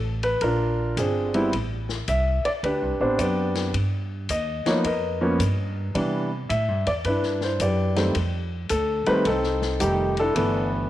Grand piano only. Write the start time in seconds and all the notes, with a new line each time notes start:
0.23 B4
0.42 D4 F4 A#4
0.98 C4 D4 G#4
1.34 G3 B3 C4 E4
2.09 E5
2.45 D5
2.64 D4 G4 B4
3.01 B3 C4 D4 G4 C5
3.18 G4 B4 D5
4.30 D#5
4.66 F3 A#3 B3 D#4 C#5
4.86 A#4 B4 D#5
5.21 F3 A#3 B3 C#4
5.95 E3 G3 B3 D4
6.49 E5
6.87 D5
7.05 D4 E4 B4
7.43 C5
7.62 G4 B4 D5
7.96 D#3 G3 A3 C4
8.70 A4
9.07 D#3 G3 A3 C4 B4
9.27 C4 D#4 A4
9.80 D#3 G3 A3 D#4 G4
10.20 D4 E4 A4
10.35 D3 E3 A3 B3